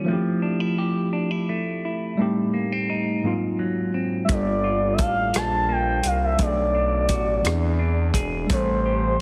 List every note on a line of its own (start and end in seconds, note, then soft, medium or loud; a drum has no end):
0.00 0.14 D#3 medium
0.00 0.15 C#4 soft
0.05 2.13 F3 medium
0.05 2.19 F3 medium
0.05 2.14 A3 medium
0.09 2.15 C4 medium
0.09 2.16 E4 medium
0.13 2.17 G4 medium
0.42 0.60 D4 medium
0.60 1.12 E4 medium
0.78 2.26 G4 medium
1.13 1.31 D4 medium
1.31 1.83 E4 soft
1.49 2.26 A3 medium
1.85 2.26 E4 soft
2.17 3.24 A2 medium
2.17 3.23 G3 medium
2.17 3.24 A3 medium
2.17 3.24 C4 medium
2.17 3.25 D#4 medium
2.22 3.25 G4 medium
2.54 2.72 A#3 soft
2.72 3.31 C4 soft
2.90 3.31 D#4 medium
3.23 4.28 G#2 medium
3.23 4.36 G#2 medium
3.23 4.29 F#3 medium
3.23 4.27 A#3 medium
3.23 4.30 C4 soft
3.23 4.30 D#4 medium
3.27 4.31 F4 medium
3.59 4.28 F#3 soft
3.94 4.36 C4 soft
4.25 6.34 G3 medium
4.25 6.39 G3 medium
4.25 6.35 A#3 medium
4.25 4.34 E5 medium
4.25 closed hi-hat medium
4.29 5.01 G1 loud
4.29 6.36 D4 medium
4.29 6.37 F4 soft
4.29 4.95 D5 loud
4.29 kick medium
4.34 6.38 A4 medium
4.64 5.32 F4 soft
4.93 5.02 E5 medium
4.98 5.31 A1 medium
4.98 6.46 A4 medium
4.98 5.37 F5 loud
4.98 kick medium
4.98 closed hi-hat medium
5.33 6.01 A#1 medium
5.33 6.02 F4 medium
5.33 5.73 A5 loud
5.33 cross-stick medium
5.33 closed hi-hat medium
5.69 6.46 A#3 medium
5.69 6.08 G5 loud
6.03 6.36 C2 medium
6.03 6.46 F4 medium
6.03 6.23 F5 medium
6.03 closed hi-hat medium
6.24 6.43 E5 medium
6.38 7.11 B1 medium
6.38 7.52 B2 medium
6.38 7.44 F#3 medium
6.38 7.45 A3 medium
6.38 7.42 B3 medium
6.38 7.44 D4 soft
6.38 kick loud
6.38 closed hi-hat medium
6.42 6.47 G#4 soft
6.42 8.16 D5 medium
6.48 7.49 A4 medium
6.75 7.52 D4 medium
7.09 7.41 A1 medium
7.09 7.52 F#4 medium
7.09 kick medium
7.09 closed hi-hat medium
7.42 8.11 E2 loud
7.42 8.49 E3 medium
7.42 9.21 E3 medium
7.42 8.49 B3 medium
7.42 8.49 C4 medium
7.42 8.50 D4 medium
7.42 closed hi-hat medium
7.46 8.51 G#4 medium
7.46 cross-stick medium
7.79 8.57 D4 medium
8.14 8.46 E1 medium
8.14 8.57 G#4 medium
8.14 kick medium
8.14 closed hi-hat medium
8.46 9.21 G3 medium
8.46 9.21 A3 medium
8.46 kick medium
8.46 closed hi-hat medium
8.50 9.16 A1 loud
8.50 9.21 E3 medium
8.50 9.21 C4 medium
8.50 9.21 A4 medium
8.50 9.21 C5 medium
8.86 9.21 G4 medium